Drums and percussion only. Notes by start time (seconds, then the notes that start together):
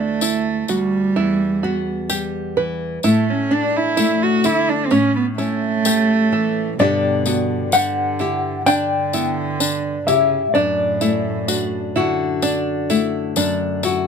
0.21 tambourine
0.68 tambourine
2.10 tambourine
3.03 tambourine
3.97 tambourine
4.44 tambourine
4.91 tambourine
5.38 tambourine
5.85 tambourine
6.79 tambourine
7.26 tambourine
7.72 tambourine
8.19 tambourine
8.66 tambourine
9.13 tambourine
9.60 tambourine
10.08 tambourine
10.55 tambourine
11.01 tambourine
11.48 tambourine
11.96 tambourine
12.42 tambourine
12.90 tambourine
13.36 tambourine
13.83 tambourine